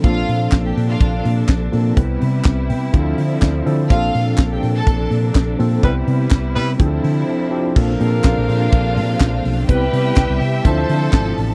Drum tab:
CC |--------|--------|--------|--------|
HH |xoxoxoxo|xoxoxoxo|xoxoxoxo|xoxoxo--|
CP |--x---x-|--x---x-|--x---x-|--x-----|
SD |--o---o-|--o---o-|--o---o-|--o-----|
BD |o-o-o-o-|o-o-o-o-|o-o-o-o-|o-o-o---|

CC |x-------|--------|
HH |-oxoxoxo|xoxoxoxo|
CP |--x---x-|--x---x-|
SD |--o---o-|--o---o-|
BD |o-o-o-o-|o-o-o-o-|